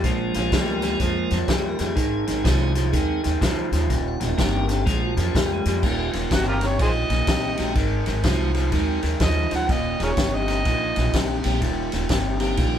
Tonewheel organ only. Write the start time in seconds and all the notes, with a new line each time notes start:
0.04 F3 G#3 A#3 D4
0.35 C5
0.40 C#5
0.56 G#4
0.71 A#4
0.83 C5
0.87 C#5
1.03 G#4
1.18 A#4
1.34 C#5
1.52 G#4
1.68 A#4
1.83 G#4
2.44 F#3 G#3 C4 D#4
2.93 F#3 G#3 C4 D#4
4.08 F#5
4.25 D#5
4.38 G3 A#3 C#4 D#4
4.42 C#5
4.57 A#4
4.73 A4
4.85 F3 G#3 A#3 D4 G#4
5.05 F#4
5.22 C#4
5.37 A#3
5.53 G#3
5.82 G3 A#3 C#4 D#4 G4
7.58 F#3 G#3 C4 D#4 F#4
8.24 F#3 G#3 C4 D#4 F#4
8.72 F#3 G#3 C4 D#4 F#4
11.45 G3 A#3 C#4 D#4 G4
12.40 G3 A#3 C#4 D#4 G4